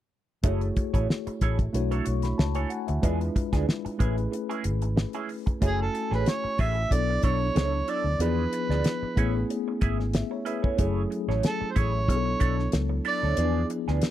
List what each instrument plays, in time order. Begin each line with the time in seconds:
0.43 fingered electric bass F#1, tine electric piano A3 E4 F#4 G#4 C#5, clean electric guitar A3 E4 G#4 C#5, kick, closed hi-hat
0.61 muted clean electric guitar stroke, closed hi-hat
0.76 muted clean electric guitar stroke, kick, closed hi-hat
0.94 fingered electric bass A1, clean electric guitar A3 E4 G#4 C#5, kick, closed hi-hat
1.09 muted clean electric guitar stroke, snare
1.27 muted clean electric guitar stroke, muted fingered electric bass stroke, closed hi-hat
1.41 fingered electric bass A1, clean electric guitar A3 E4 G#4 C#5, kick, closed hi-hat
1.59 muted clean electric guitar stroke, kick, closed hi-hat
1.73 fingered electric bass B1, tine electric piano A3 D4 E4 F#4 C#5, muted clean electric guitar stroke, closed hi-hat
1.91 clean electric guitar D4 E4 A4 C#5, closed hi-hat
2.05 fingered electric bass B1, tine electric piano C#6, muted clean electric guitar stroke, closed hi-hat
2.22 tine electric piano B5, muted clean electric guitar stroke, snare, closed hi-hat
2.38 fingered electric bass C#2, tine electric piano A5, muted clean electric guitar stroke, snare
2.55 clean electric guitar D4 E4 A4 C#5, tine electric piano G#5, closed hi-hat
2.70 tine electric piano F#5, muted clean electric guitar stroke, closed hi-hat
2.87 fingered electric bass D2, tine electric piano E5, muted clean electric guitar stroke, closed hi-hat
3.02 fingered electric bass E2, clean electric guitar F3 B3 D4 G#4, tine electric piano G#3 D4 E4 F4 B4, kick, closed hi-hat
3.21 muted clean electric guitar stroke, closed hi-hat
3.36 muted clean electric guitar stroke, kick, closed hi-hat
3.52 fingered electric bass D2, clean electric guitar F3 B3 D4 G#4, kick, snare, closed hi-hat
3.67 muted clean electric guitar stroke, snare
3.85 muted clean electric guitar stroke, muted fingered electric bass stroke, closed hi-hat
3.98 fingered electric bass A1, clean electric guitar G#3 C#4 E4 G#4, tine electric piano A3 C#4 E4 G#4 B4, kick, closed hi-hat
4.17 muted clean electric guitar stroke, closed hi-hat
4.31 muted clean electric guitar stroke, closed hi-hat
4.49 clean electric guitar G#3 C#4 E4 G#4, closed hi-hat
4.64 fingered electric bass G#1, muted clean electric guitar stroke, closed hi-hat
4.82 muted clean electric guitar stroke, closed hi-hat
4.96 muted clean electric guitar stroke, snare
5.13 clean electric guitar G#3 C#4 E4 G#4, closed hi-hat
5.29 muted clean electric guitar stroke, open hi-hat
5.46 muted clean electric guitar stroke, kick, closed hi-hat
5.60 fingered electric bass F#1, clean electric guitar E3 A3 C#4 G#4, tine electric piano A3 C#4 E4 F#4 G#5, kick, closed hi-hat
5.66 harmonica G#4
5.82 harmonica A4
5.94 muted clean electric guitar stroke, closed hi-hat
6.11 fingered electric bass A1, clean electric guitar E3 A3 C#4 G#4, harmonica B4, snare
6.26 harmonica C#5, snare, closed hi-hat
6.44 muted clean electric guitar stroke, muted fingered electric bass stroke
6.58 fingered electric bass A1, clean electric guitar E3 A3 C#4 G#4, harmonica E5, kick, open hi-hat
6.77 muted clean electric guitar stroke
6.90 fingered electric bass B1, tine electric piano F#3 B3 D4 E4 A4, harmonica D5, muted clean electric guitar stroke, kick, closed hi-hat
7.10 muted clean electric guitar stroke
7.23 fingered electric bass B1, clean electric guitar D4 E4 A4 D5, harmonica C#5, kick, closed hi-hat
7.41 muted clean electric guitar stroke
7.55 fingered electric bass C#2, clean electric guitar D4 E4 A4 C#5, snare, closed hi-hat
7.74 muted clean electric guitar stroke
7.88 clean electric guitar D4 E4 A4 D5, harmonica D5, closed hi-hat
8.04 fingered electric bass D2, muted clean electric guitar stroke
8.19 fingered electric bass E2, tine electric piano F3 B3 D4 E4 G#4, clean electric guitar B3 F4 G#4 D5, harmonica B4, closed hi-hat
8.53 muted clean electric guitar stroke, closed hi-hat
8.69 fingered electric bass D2, clean electric guitar B3 F4 G#4 D5, snare
8.84 snare, closed hi-hat
9.02 muted fingered electric bass stroke, muted clean electric guitar stroke
9.16 fingered electric bass A1, tine electric piano A3 B3 C#4 E4 G#4, clean electric guitar C#4 E4 G#4 C#5, kick, closed hi-hat
9.35 muted clean electric guitar stroke
9.50 muted clean electric guitar stroke, closed hi-hat
9.68 muted clean electric guitar stroke
9.81 fingered electric bass G#1, clean electric guitar C#4 E4 G#4 E5, kick, closed hi-hat
9.99 muted clean electric guitar stroke, snare
10.14 tine electric piano E5, muted clean electric guitar stroke, snare, closed hi-hat
10.31 tine electric piano C#5, muted clean electric guitar stroke
10.45 clean electric guitar C#4 E4 G#4 E5, tine electric piano B4, closed hi-hat
10.63 clean electric guitar C#4 E4 G#4 C#5, tine electric piano A4, kick
10.77 fingered electric bass F#1, tine electric piano F#3 A3 C#4 E4 G#4, clean electric guitar A3 E4 G#4 C#5, kick, closed hi-hat
11.10 muted clean electric guitar stroke, closed hi-hat
11.28 fingered electric bass A1, clean electric guitar A3 E4 G#4 C#5, snare
11.43 harmonica A4, snare, closed hi-hat
11.61 muted clean electric guitar stroke, muted fingered electric bass stroke
11.71 harmonica C5
11.76 fingered electric bass A1, clean electric guitar A3 E4 G#4 C#5, harmonica C#5, kick, closed hi-hat
11.93 muted clean electric guitar stroke
12.08 fingered electric bass B1, tine electric piano F#3 B3 D4 E4 G#4, harmonica C#5, muted clean electric guitar stroke, kick, closed hi-hat
12.17 tine electric piano A4
12.25 muted clean electric guitar stroke
12.40 fingered electric bass B1, clean electric guitar D4 E4 A4 D5, kick, closed hi-hat
12.58 muted clean electric guitar stroke, snare
12.72 fingered electric bass C#2, muted clean electric guitar stroke, snare, closed hi-hat
12.89 muted clean electric guitar stroke
13.05 clean electric guitar D4 E4 A4 D5, harmonica D5, open hi-hat
13.23 fingered electric bass D2, clean electric guitar D4 E4 A4 C#5
13.37 fingered electric bass E2, tine electric piano F3 B3 D4 E4 G#4, clean electric guitar F3 B3 D4 G#4, closed hi-hat
13.70 muted clean electric guitar stroke, closed hi-hat
13.88 fingered electric bass D2, clean electric guitar F3 B3 D4 G#4, snare
14.02 snare, closed hi-hat